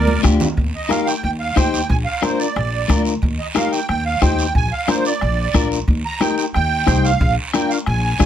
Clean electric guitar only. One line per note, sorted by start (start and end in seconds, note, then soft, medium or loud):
0.23 0.47 D4 medium
0.23 0.47 F4 medium
0.23 0.47 G4 medium
0.89 1.13 D#4 medium
0.89 1.13 G4 soft
0.89 1.13 A#4 medium
1.56 1.80 D#4 medium
1.56 1.80 G4 medium
1.56 1.80 C5 medium
2.22 2.46 D4 medium
2.22 2.46 F4 medium
2.22 2.46 A#4 medium
2.89 3.13 D4 medium
2.89 3.13 F4 medium
2.89 3.13 A#4 medium
3.55 3.79 D#4 medium
3.55 3.79 G4 medium
3.55 3.79 A#4 medium
4.22 4.45 D#4 medium
4.22 4.45 G4 medium
4.22 4.45 C5 medium
4.88 5.11 D4 medium
4.88 5.12 F4 medium
4.88 5.12 A#4 medium
5.54 5.78 D4 medium
5.54 5.78 F4 medium
5.54 5.78 A#4 medium
6.21 6.44 D#4 medium
6.21 6.45 G4 medium
6.21 6.45 A#4 medium
6.86 7.10 D#4 medium
6.86 7.10 G4 medium
6.86 7.11 C5 medium
7.54 7.77 D4 medium
7.54 7.77 F4 medium
7.54 7.77 A#4 medium
8.19 8.26 D4 medium
8.19 8.26 F4 medium
8.19 8.26 G#4 medium